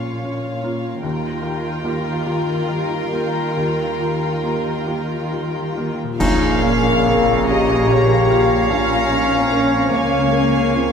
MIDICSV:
0, 0, Header, 1, 13, 480
1, 0, Start_track
1, 0, Tempo, 813008
1, 613, Time_signature, 6, 3, 24, 8
1, 1586, Tempo, 874636
1, 3986, Tempo, 818554
1, 6250, End_track
2, 0, Start_track
2, 0, Title_t, "Violin section"
2, 0, Program_c, 0, 48
2, 0, Note_on_c, 0, 77, 37
2, 593, Note_off_c, 0, 77, 0
2, 613, Note_on_c, 0, 79, 56
2, 3379, Note_off_c, 0, 79, 0
2, 3518, Note_on_c, 0, 77, 63
2, 4217, Note_off_c, 0, 77, 0
2, 4244, Note_on_c, 0, 82, 59
2, 4948, Note_off_c, 0, 82, 0
2, 4955, Note_on_c, 0, 82, 60
2, 5652, Note_off_c, 0, 82, 0
2, 5667, Note_on_c, 0, 80, 56
2, 6250, Note_off_c, 0, 80, 0
2, 6250, End_track
3, 0, Start_track
3, 0, Title_t, "Flute section"
3, 0, Program_c, 1, 73
3, 3517, Note_on_c, 1, 77, 57
3, 6250, Note_off_c, 1, 77, 0
3, 6250, End_track
4, 0, Start_track
4, 0, Title_t, "Violin section"
4, 0, Program_c, 2, 48
4, 0, Note_on_c, 2, 73, 36
4, 586, Note_off_c, 2, 73, 0
4, 609, Note_on_c, 2, 70, 55
4, 3399, Note_off_c, 2, 70, 0
4, 3512, Note_on_c, 2, 77, 65
4, 4214, Note_off_c, 2, 77, 0
4, 4241, Note_on_c, 2, 75, 62
4, 4481, Note_off_c, 2, 75, 0
4, 4484, Note_on_c, 2, 73, 54
4, 4720, Note_off_c, 2, 73, 0
4, 4720, Note_on_c, 2, 77, 65
4, 5668, Note_off_c, 2, 77, 0
4, 5676, Note_on_c, 2, 77, 56
4, 6250, Note_off_c, 2, 77, 0
4, 6250, End_track
5, 0, Start_track
5, 0, Title_t, "Oboe"
5, 0, Program_c, 3, 68
5, 3515, Note_on_c, 3, 73, 65
5, 6250, Note_off_c, 3, 73, 0
5, 6250, End_track
6, 0, Start_track
6, 0, Title_t, "Felt piano"
6, 0, Program_c, 4, 0
6, 0, Control_c, 4, 64, 127
6, 0, Note_on_c, 4, 34, 35
6, 0, Note_on_c, 4, 58, 33
6, 0, Note_on_c, 4, 61, 34
6, 0, Note_on_c, 4, 65, 36
6, 119, Note_off_c, 4, 58, 0
6, 120, Note_off_c, 4, 61, 0
6, 121, Note_off_c, 4, 65, 0
6, 140, Note_on_c, 4, 61, 31
6, 144, Note_on_c, 4, 65, 33
6, 353, Note_off_c, 4, 61, 0
6, 355, Note_off_c, 4, 65, 0
6, 373, Note_on_c, 4, 61, 36
6, 375, Note_on_c, 4, 58, 37
6, 378, Note_on_c, 4, 65, 38
6, 587, Note_off_c, 4, 61, 0
6, 588, Note_off_c, 4, 58, 0
6, 590, Note_off_c, 4, 65, 0
6, 606, Note_on_c, 4, 39, 49
6, 624, Control_c, 4, 64, 0
6, 627, Note_off_c, 4, 34, 0
6, 733, Control_c, 4, 64, 127
6, 841, Note_off_c, 4, 39, 0
6, 842, Note_on_c, 4, 65, 37
6, 845, Note_on_c, 4, 67, 41
6, 1063, Note_off_c, 4, 65, 0
6, 1065, Note_off_c, 4, 67, 0
6, 1087, Note_on_c, 4, 58, 39
6, 1094, Note_on_c, 4, 65, 41
6, 1094, Note_on_c, 4, 67, 45
6, 1310, Note_off_c, 4, 58, 0
6, 1313, Note_off_c, 4, 65, 0
6, 1313, Note_off_c, 4, 67, 0
6, 1335, Note_on_c, 4, 58, 38
6, 1336, Note_on_c, 4, 65, 39
6, 1336, Note_on_c, 4, 67, 42
6, 1563, Note_off_c, 4, 58, 0
6, 1563, Note_off_c, 4, 67, 0
6, 1564, Note_off_c, 4, 65, 0
6, 1582, Note_on_c, 4, 67, 37
6, 1583, Note_on_c, 4, 65, 35
6, 1803, Note_off_c, 4, 67, 0
6, 1804, Note_off_c, 4, 65, 0
6, 1827, Note_on_c, 4, 65, 33
6, 1828, Note_on_c, 4, 58, 31
6, 1831, Note_on_c, 4, 67, 34
6, 2048, Note_off_c, 4, 65, 0
6, 2049, Note_off_c, 4, 58, 0
6, 2050, Note_off_c, 4, 67, 0
6, 2070, Note_on_c, 4, 39, 40
6, 2082, Control_c, 4, 64, 0
6, 2178, Control_c, 4, 64, 127
6, 2304, Note_off_c, 4, 39, 0
6, 2308, Note_on_c, 4, 65, 27
6, 2309, Note_on_c, 4, 67, 30
6, 2528, Note_off_c, 4, 65, 0
6, 2528, Note_off_c, 4, 67, 0
6, 2544, Note_on_c, 4, 58, 28
6, 2549, Note_on_c, 4, 65, 26
6, 2551, Note_on_c, 4, 67, 30
6, 2767, Note_off_c, 4, 58, 0
6, 2769, Note_off_c, 4, 65, 0
6, 2771, Note_off_c, 4, 67, 0
6, 2784, Note_on_c, 4, 58, 26
6, 2787, Note_on_c, 4, 65, 26
6, 2788, Note_on_c, 4, 67, 31
6, 3010, Note_off_c, 4, 58, 0
6, 3011, Note_off_c, 4, 65, 0
6, 3011, Note_off_c, 4, 67, 0
6, 3029, Note_on_c, 4, 65, 28
6, 3033, Note_on_c, 4, 67, 29
6, 3253, Note_off_c, 4, 65, 0
6, 3256, Note_off_c, 4, 67, 0
6, 3281, Note_on_c, 4, 58, 29
6, 3282, Note_on_c, 4, 65, 28
6, 3283, Note_on_c, 4, 67, 29
6, 3494, Note_off_c, 4, 58, 0
6, 3494, Note_off_c, 4, 65, 0
6, 3495, Note_off_c, 4, 67, 0
6, 3515, Note_on_c, 4, 34, 66
6, 3526, Control_c, 4, 64, 0
6, 3603, Control_c, 4, 64, 127
6, 3747, Note_on_c, 4, 58, 47
6, 3987, Note_on_c, 4, 70, 48
6, 4139, Note_off_c, 4, 58, 0
6, 4236, Note_on_c, 4, 77, 50
6, 4384, Note_off_c, 4, 70, 0
6, 4483, Note_on_c, 4, 70, 50
6, 4620, Note_off_c, 4, 77, 0
6, 4716, Note_on_c, 4, 65, 52
6, 4862, Note_off_c, 4, 70, 0
6, 4932, Note_off_c, 4, 34, 0
6, 4948, Note_on_c, 4, 34, 58
6, 4967, Control_c, 4, 64, 0
6, 5063, Control_c, 4, 64, 127
6, 5097, Note_off_c, 4, 65, 0
6, 5191, Note_on_c, 4, 58, 42
6, 5428, Note_on_c, 4, 70, 47
6, 5570, Note_off_c, 4, 58, 0
6, 5670, Note_on_c, 4, 77, 53
6, 5810, Note_off_c, 4, 70, 0
6, 5901, Note_on_c, 4, 70, 50
6, 6052, Note_off_c, 4, 77, 0
6, 6147, Note_on_c, 4, 65, 46
6, 6250, Note_off_c, 4, 34, 0
6, 6250, Note_off_c, 4, 65, 0
6, 6250, Note_off_c, 4, 70, 0
6, 6250, End_track
7, 0, Start_track
7, 0, Title_t, "Harp"
7, 0, Program_c, 5, 46
7, 0, Note_on_c, 5, 46, 34
7, 0, Note_on_c, 5, 58, 31
7, 0, Note_on_c, 5, 65, 39
7, 0, Note_on_c, 5, 73, 38
7, 139, Note_off_c, 5, 58, 0
7, 146, Note_on_c, 5, 58, 33
7, 369, Note_off_c, 5, 65, 0
7, 376, Note_on_c, 5, 65, 43
7, 609, Note_on_c, 5, 51, 46
7, 630, Note_off_c, 5, 73, 0
7, 631, Note_off_c, 5, 46, 0
7, 841, Note_off_c, 5, 65, 0
7, 848, Note_on_c, 5, 65, 40
7, 1084, Note_on_c, 5, 70, 45
7, 1327, Note_off_c, 5, 65, 0
7, 1334, Note_on_c, 5, 65, 45
7, 1585, Note_on_c, 5, 55, 37
7, 1818, Note_off_c, 5, 65, 0
7, 1825, Note_on_c, 5, 65, 44
7, 2059, Note_off_c, 5, 51, 0
7, 2065, Note_on_c, 5, 51, 41
7, 2306, Note_off_c, 5, 55, 0
7, 2312, Note_on_c, 5, 55, 32
7, 2388, Note_off_c, 5, 58, 0
7, 2547, Note_off_c, 5, 70, 0
7, 2554, Note_on_c, 5, 70, 33
7, 2792, Note_off_c, 5, 65, 0
7, 2798, Note_on_c, 5, 65, 32
7, 3034, Note_off_c, 5, 55, 0
7, 3041, Note_on_c, 5, 55, 28
7, 3274, Note_off_c, 5, 65, 0
7, 3281, Note_on_c, 5, 65, 33
7, 3420, Note_on_c, 5, 46, 55
7, 3445, Note_on_c, 5, 53, 45
7, 3464, Note_off_c, 5, 65, 0
7, 3470, Note_on_c, 5, 65, 42
7, 3487, Note_off_c, 5, 70, 0
7, 3493, Note_on_c, 5, 70, 45
7, 3531, Note_off_c, 5, 51, 0
7, 3536, Note_off_c, 5, 55, 0
7, 5668, Note_off_c, 5, 46, 0
7, 5695, Note_off_c, 5, 53, 0
7, 5722, Note_off_c, 5, 65, 0
7, 5747, Note_off_c, 5, 70, 0
7, 6250, End_track
8, 0, Start_track
8, 0, Title_t, "French horn section"
8, 0, Program_c, 6, 60
8, 3512, Note_on_c, 6, 58, 92
8, 4214, Note_off_c, 6, 58, 0
8, 4236, Note_on_c, 6, 67, 100
8, 4954, Note_off_c, 6, 67, 0
8, 4955, Note_on_c, 6, 65, 73
8, 5192, Note_off_c, 6, 65, 0
8, 5196, Note_on_c, 6, 63, 73
8, 5312, Note_off_c, 6, 63, 0
8, 5325, Note_on_c, 6, 60, 72
8, 5432, Note_on_c, 6, 61, 79
8, 5436, Note_off_c, 6, 60, 0
8, 5549, Note_off_c, 6, 61, 0
8, 5559, Note_on_c, 6, 60, 74
8, 5673, Note_off_c, 6, 60, 0
8, 5682, Note_on_c, 6, 61, 79
8, 6154, Note_off_c, 6, 61, 0
8, 6155, Note_on_c, 6, 60, 74
8, 6250, Note_off_c, 6, 60, 0
8, 6250, End_track
9, 0, Start_track
9, 0, Title_t, "Viola section"
9, 0, Program_c, 7, 48
9, 0, Note_on_c, 7, 65, 34
9, 593, Note_off_c, 7, 65, 0
9, 616, Note_on_c, 7, 65, 58
9, 3380, Note_off_c, 7, 65, 0
9, 3514, Note_on_c, 7, 49, 64
9, 4932, Note_off_c, 7, 49, 0
9, 4958, Note_on_c, 7, 61, 58
9, 5654, Note_off_c, 7, 61, 0
9, 5670, Note_on_c, 7, 58, 55
9, 6250, Note_off_c, 7, 58, 0
9, 6250, End_track
10, 0, Start_track
10, 0, Title_t, "Clarinet"
10, 0, Program_c, 8, 71
10, 3514, Note_on_c, 8, 63, 79
10, 3746, Note_on_c, 8, 61, 62
10, 3754, Note_off_c, 8, 63, 0
10, 3980, Note_on_c, 8, 60, 61
10, 3989, Note_off_c, 8, 61, 0
10, 4231, Note_off_c, 8, 60, 0
10, 4235, Note_on_c, 8, 58, 62
10, 4939, Note_off_c, 8, 58, 0
10, 4962, Note_on_c, 8, 61, 78
10, 5667, Note_on_c, 8, 58, 63
10, 5676, Note_off_c, 8, 61, 0
10, 6250, Note_off_c, 8, 58, 0
10, 6250, End_track
11, 0, Start_track
11, 0, Title_t, "Cello section"
11, 0, Program_c, 10, 48
11, 0, Note_on_c, 10, 46, 35
11, 589, Note_off_c, 10, 46, 0
11, 609, Note_on_c, 10, 51, 55
11, 3377, Note_off_c, 10, 51, 0
11, 3511, Note_on_c, 10, 46, 66
11, 5641, Note_off_c, 10, 46, 0
11, 5666, Note_on_c, 10, 49, 56
11, 6250, Note_off_c, 10, 49, 0
11, 6250, End_track
12, 0, Start_track
12, 0, Title_t, "Double bass section"
12, 0, Program_c, 11, 48
12, 3519, Note_on_c, 11, 34, 65
12, 5645, Note_off_c, 11, 34, 0
12, 5671, Note_on_c, 11, 37, 55
12, 6250, Note_off_c, 11, 37, 0
12, 6250, End_track
13, 0, Start_track
13, 0, Title_t, "Drums"
13, 3515, Note_on_c, 9, 35, 72
13, 3515, Note_on_c, 9, 49, 72
13, 3570, Note_off_c, 9, 35, 0
13, 3570, Note_off_c, 9, 49, 0
13, 6250, End_track
0, 0, End_of_file